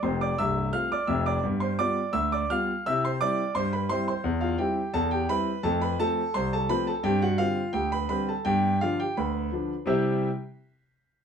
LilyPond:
<<
  \new Staff \with { instrumentName = "Grand piano" } { \time 2/4 \key c \major \tempo 4 = 85 <c'' c'''>16 <d'' d'''>16 <e'' e'''>8 <f'' f'''>16 <d'' d'''>16 <e'' e'''>16 <d'' d'''>16 | r16 <c'' c'''>16 <d'' d'''>8 <e'' e'''>16 <d'' d'''>16 <f'' f'''>8 | <e'' e'''>16 <c'' c'''>16 <d'' d'''>8 <c'' c'''>16 <b' b''>16 <c'' c'''>16 <c'' c'''>16 | r16 <f' f''>16 <g' g''>8 <a' a''>16 <g' g''>16 <b' b''>8 |
<a' a''>16 <b' b''>16 <a' a''>8 <c'' c'''>16 <a' a''>16 <b' b''>16 <a' a''>16 | <g' g''>16 <fis' fis''>16 <f' f''>8 <g' g''>16 <b' b''>16 <b' b''>16 <a' a''>16 | <g' g''>8 <f' f''>16 <g' g''>16 <b' b''>4 | <c g e' g' c'' e'' e'''>8 r4. | }
  \new Staff \with { instrumentName = "Grand piano" } { \clef bass \time 2/4 \key c \major <f,, f,>8 <c,, c,>8 <a c' f'>8 <f,, f,>8 | <g, b>8 <g b f'>8 d,8 <g b f'>8 | <c e'>8 <g c' e'>8 g,8 <g c' e'>8 | e,8 <g c' e'>8 e,8 <g c' e'>8 |
<f, a>8 <f a c'>8 c,8 <f a c'>8 | <g, c'>8 <d g c'>8 d,8 <d g c'>8 | <g, b>8 <d f d'>8 d,8 <d f d'>8 | r2 | }
>>